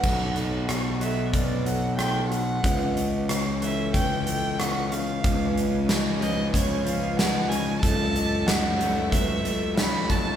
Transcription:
Already playing: F#5
0.03 B1 A4, kick, crash
0.36 closed hi-hat
0.68 B2, cross-stick, closed hi-hat
1.00 F#3 A4 E5, closed hi-hat
1.33 B2 B4 D5, kick, closed hi-hat
1.66 F#3 A4 F#5, closed hi-hat
1.97 A3 G5, cross-stick, closed hi-hat
2.29 B2 F#5, closed hi-hat
2.62 C#2 B4, kick, closed hi-hat
2.97 closed hi-hat
3.29 C#3, cross-stick, closed hi-hat
3.61 E3 A4 E5, closed hi-hat
3.93 C#3 B4 G5, kick, closed hi-hat
4.26 E3 A4 G5, closed hi-hat
4.59 B3 F#5, cross-stick, closed hi-hat
4.92 C#3 F5, closed hi-hat
5.23 C#2 C#4 G#4 B4 G#5, kick, closed hi-hat
5.57 closed hi-hat
5.89 C#3, snare, closed hi-hat
6.21 F3 B4 D#5, closed hi-hat
6.53 C#3 C#5, kick, closed hi-hat
6.84 F3 B4 F5, closed hi-hat
7.17 G#3 F#5, snare, closed hi-hat
7.48 C#3 G#5, closed hi-hat
7.82 C#2 F#2 F#4 A4 E5 A5, kick, closed hi-hat
8.16 closed hi-hat
8.47 F#3 F#5, snare, closed hi-hat
8.79 A3 A4, closed hi-hat
9.11 F#3 B4 E5, kick, closed hi-hat
9.44 A3 A4, closed hi-hat
9.76 C#4 B5, snare, closed hi-hat
10.10 F#3 A5, kick, closed hi-hat

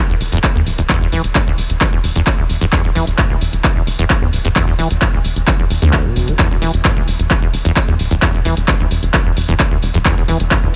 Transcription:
0.09 E1 E2
0.21 E1, open hi-hat
0.32 E1 E2, closed hi-hat
0.44 kick, clap, closed hi-hat
0.55 D2 E2
0.66 D1, open hi-hat
0.78 D1 E2, closed hi-hat
0.89 E2, kick, clap, closed hi-hat
1.01 E1 E2
1.12 E1 E3, open hi-hat
1.24 E1, closed hi-hat
1.35 G2, kick, clap, closed hi-hat
1.47 E1 D2
1.58 E1, open hi-hat
1.70 E1, closed hi-hat
1.81 E3, kick, clap, closed hi-hat
1.93 E1 E2
2.04 E1, open hi-hat
2.16 E1 E2, closed hi-hat
2.27 kick, clap, closed hi-hat
2.38 E1 D2
2.50 E1, open hi-hat
2.61 D1 E2, closed hi-hat
2.72 E2, kick, clap, closed hi-hat
2.84 E1 E2
2.95 E1 E3, open hi-hat
3.07 E1, closed hi-hat
3.18 G2, kick, clap, closed hi-hat
3.30 E1 D2
3.41 E1, open hi-hat
3.53 E1, closed hi-hat
3.64 E3, kick, clap, closed hi-hat
3.76 E1 E2
3.87 E1, open hi-hat
3.99 E1 E2, closed hi-hat
4.10 kick, clap, closed hi-hat
4.22 D2 E2
4.33 D1, open hi-hat
4.45 D1 E2, closed hi-hat
4.56 E2, kick, clap, closed hi-hat
4.67 E1 E2
4.79 E1 E3, open hi-hat
4.91 E1, closed hi-hat
5.02 G2, kick, clap, closed hi-hat
5.13 E1 D2
5.25 E1, open hi-hat
5.36 E1, closed hi-hat
5.47 E3, kick, clap, closed hi-hat
5.59 E1 E2
5.70 E1, open hi-hat
5.82 D2 E2, closed hi-hat
5.93 kick, clap, closed hi-hat
6.05 F1 B2
6.16 E1, open hi-hat
6.28 E1 E3, closed hi-hat
6.39 E2, kick, clap, closed hi-hat
6.51 E1 E2
6.62 E1 E3, open hi-hat
6.74 E1, closed hi-hat
6.85 G2, kick, clap, closed hi-hat
6.96 E1 D2
7.08 E1, open hi-hat
7.19 E1, closed hi-hat
7.30 E3, kick, clap, closed hi-hat
7.42 E1 E2
7.54 E1, open hi-hat
7.65 E1 E2, closed hi-hat
7.76 kick, clap, closed hi-hat
7.88 D2 E2
7.99 D1, open hi-hat
8.11 D1 E2, closed hi-hat
8.22 E2, kick, clap, closed hi-hat
8.34 E1 E2
8.45 E1 E3, open hi-hat
8.57 E1, closed hi-hat
8.68 G2, kick, clap, closed hi-hat
8.80 E1 D2
8.91 E1, open hi-hat
9.03 E1, closed hi-hat
9.14 E3, kick, clap, closed hi-hat
9.26 E1 E2
9.37 E1, open hi-hat
9.48 E1 E2, closed hi-hat
9.60 kick, clap, closed hi-hat
9.71 E1 D2
9.82 E1, open hi-hat
9.94 D1 E2, closed hi-hat
10.05 E2, kick, clap, closed hi-hat, riser
10.17 E1 E2
10.28 E1 E3, open hi-hat
10.40 E1, closed hi-hat
10.51 G2, kick, clap, closed hi-hat
10.63 E1 D2

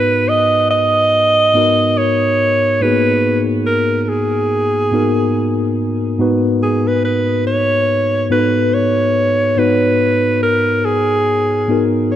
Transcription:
Already playing: G#2 B3 D#4 F#4 A#4 B4
0.29 D#5
0.71 D#5
1.54 G#2 B3 D#4 F#4 A#4
1.98 C#5
2.81 G#2 A#3 D#4 F#4 G#4 B4
2.88 B3
3.66 A#4
4.03 A#4
4.09 G#4
4.92 G#2 B3 D#4 F#4 A#4
6.18 G#2 B3 D#4 F#4 B4
6.63 G#4
6.87 B4
7.05 B4
7.47 C#5
8.30 G#2 B3 D#4 F#4 A4 B4
8.39 B4
8.74 C#5
9.57 G#2 B3 D#4 F#4 B4 C#5
10.43 A#4
10.85 G#4
11.68 G#2 B3 D#4 F#4 A#4
12.12 C#5

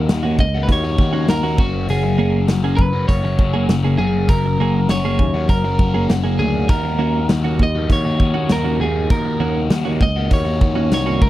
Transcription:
Already playing: F#4
0.08 D#2 D#3 A#3 D#4 F#4, muted clean electric guitar stroke, snare, open hi-hat
0.24 A#3 C#4 D#4 F#4
0.39 C#2 D#5, muted overdriven electric guitar stroke, kick
0.55 A#3 D#4 F#4
0.63 B4
0.68 D#2, muted clean electric guitar stroke, kick, open hi-hat
0.72 C#5
0.83 A#3 D#4 F#4, muted clean electric guitar stroke
0.98 D#2 D#3 A#3 D#4 F#4, kick
1.13 A#3 C#4 D#4 F#4
1.28 D#2 D#3 A#3 D#4 F#4 A#4, snare, open hi-hat
1.43 A#3 C#4 D#4 F#4
1.58 F#1 F#2 C#3 F#3 A#3 C#4 F#4, kick
1.88 F#1 F#2 C#3 F#3 A#3 C#4 F#4 G#4, open hi-hat
2.03 muted clean electric guitar stroke
2.17 F#3 A#3 C#4 F#4 G#4
2.48 F#1 F#2 C#3 F#3 A#3 C#4 F#4, muted clean electric guitar stroke, snare, open hi-hat
2.63 F#3 A#3 C#4 F#4 G#4
2.77 F#1 B4, muted overdriven electric guitar stroke, kick
2.93 F#3 A#3 C#4 F#4
3.08 F#1 C#5, muted clean electric guitar stroke, kick, open hi-hat
3.23 F#3 A#3 C#4 F#4, muted clean electric guitar stroke
3.38 F#3 A#3 C#4 F#4, kick
3.54 F#3 A#3 C#4 F#4 G#4
3.68 F#1 F#2 C#3 F#3 A#3 C#4 F#4, snare, open hi-hat
3.83 F#3 A#3 C#4 F#4 G#4
3.98 F#1 F#3 A#3 C#4 F#4 G#4
4.28 F#1 F#2 C#3 F#3 A#3 C#4 F#4 A#4, kick, open hi-hat
4.46 muted clean electric guitar stroke
4.58 F#1 F#3 A#3 C#4 F#4 G#4
4.88 F#1 F#2 C#3 F#3 A#3 C#4 F#4 C#5, muted clean electric guitar stroke, snare, open hi-hat
5.04 F#3 A#3 C#4 F#4 G#4
5.19 D#2, muted overdriven electric guitar stroke, kick
5.34 F#3 A#3 C#4 F#4
5.49 F#1 A#4, muted clean electric guitar stroke, kick, open hi-hat
5.64 F#3 A#3 C#4 F#4, muted clean electric guitar stroke
5.79 F#1 F#3 A#3 C#4 F#4, kick
5.94 F#3 A#3 C#4 F#4 G#4
6.08 F#1 F#2 C#3 F#3 A#3 C#4 F#4, snare, open hi-hat
6.23 F#3 A#3 C#4 F#4 G#4
6.39 D2 F#3 A#3 C#4 F#4 G#4
6.69 D#2 D#3 A#3 D#4 F#4 A#4, kick, open hi-hat
6.84 muted clean electric guitar stroke
6.99 D#3 A#3 C#4 D#4 F#4
7.29 D#2 D#3 A#3 D#4 F#4, muted clean electric guitar stroke, snare, open hi-hat
7.44 A#3 C#4 D#4 F#4
7.59 D#2 D#5, muted overdriven electric guitar stroke, kick
7.75 A#3 D#4 F#4
7.89 D#2 C#5, muted clean electric guitar stroke, kick, open hi-hat
8.05 A#3 D#4 F#4, muted clean electric guitar stroke
8.20 D#3 A#3 D#4 F#4, kick
8.34 A#3 C#4 D#4 F#4
8.49 D#2 D#3 A#3 D#4 F#4 A#4, snare, open hi-hat
8.64 C#4 D#4 F#4
8.69 A#3
8.80 D#2 D#3 A#3 D#4 F#4 G#4
9.10 D#2 D#3 A#3 D#4 F#4 A#4, kick, open hi-hat
9.25 muted clean electric guitar stroke
9.40 D#2 D#3 A#3 C#4 D#4 F#4
9.70 D#2 D#3 A#3 D#4 F#4, muted clean electric guitar stroke, snare, open hi-hat
9.86 A#3 C#4 D#4 F#4
10.01 C#2 D#5, muted overdriven electric guitar stroke, kick
10.16 A#3 D#4 F#4
10.31 D#2 C#5, muted clean electric guitar stroke, kick, open hi-hat
10.45 A#3 D#4 F#4, muted clean electric guitar stroke
10.60 D#2 D#3 A#3 D#4 F#4, kick
10.76 A#3 C#4 D#4 F#4
10.90 C2 D#3 A#3 D#4 F#4, snare, open hi-hat
10.94 C#5
11.05 A#3 C#4 D#4 F#4
11.21 C#2 C#3 F3 G#3 C#4 F4 A#4, kick

